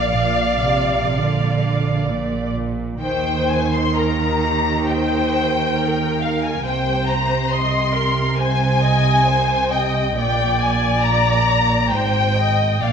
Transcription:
Already playing: A#1 D5 F5
0.11 A#2
0.61 C3
1.12 D3
2.07 A#2
3.01 D#2 D#3 C5 G5
3.48 G#5
3.73 C6
3.97 A#4 A#5
4.44 G4
4.89 C5 G5
5.79 A#4
6.21 F5
6.43 G#5
6.63 C2 C3 C5 G5
7.08 A#5
7.51 D#5 C6
7.95 A#4
8.39 C5 G#5
8.82 D#5
9.26 C5
9.71 D#5 G5
10.15 A#1 A#2 D5 G5
10.59 G#5
11.03 A#5
11.91 G#1 G#2 C5 G5
12.37 D#5
12.83 A#1 A#2 D5 F5

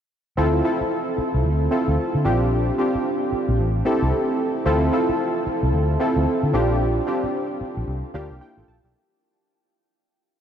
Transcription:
0.37 D2 C4 E4 F4 A4
0.64 C4 E4 F4 A4
0.81 muted fingered electric bass stroke
1.18 muted fingered electric bass stroke
1.34 C2
1.45 D2
1.71 C4 E4 F4 A4
1.88 D2
2.15 D3
2.24 A#1 C4 D4 F4 G4
2.78 C4 D4 F4 G4
2.95 muted fingered electric bass stroke
3.32 muted fingered electric bass stroke
3.48 A#1
3.59 A1
3.85 C4 E4 G4 A4
4.02 C2
4.66 D2 C4 E4 F4 A4
4.92 C4 E4 F4 A4
5.09 muted fingered electric bass stroke
5.47 muted fingered electric bass stroke
5.63 C2
5.73 D2
6.00 C4 E4 F4 A4
6.16 D2
6.43 D3
6.53 A#1 C4 D4 F4 G4
7.07 C4 D4 F4 G4
7.24 muted fingered electric bass stroke
7.61 muted fingered electric bass stroke
7.77 A#1
7.87 C2
8.14 D2 A#3 D4 F4 G4 F5
8.30 C2
8.41 E4 G4 G5
8.57 A1 F4 A4
8.68 A#1 A5
8.84 B1 E4 G4

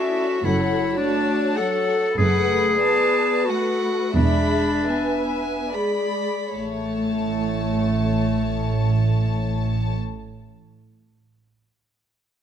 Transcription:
Already playing: A2 C#4 E4 F#4 A4 D5 E5
0.43 F#1 F#2 F#3 E4 A4 C#5 F#5
0.98 A3 D4 F#4 D5 A5
1.57 F#3 A4 F#5
2.18 F#1 F#2 A3 G#4 A4 B4 F#5
2.81 B3 B4 D5 A5
3.45 A3 F#4 A4 B4 F#5
4.14 E1 E2 G#3 D4 G#4 D5 E5 B5
4.88 B3 B4 E5 G#5
5.71 G#3 G#4 D5 B5
6.54 A1 A2 A3 C#5 A5

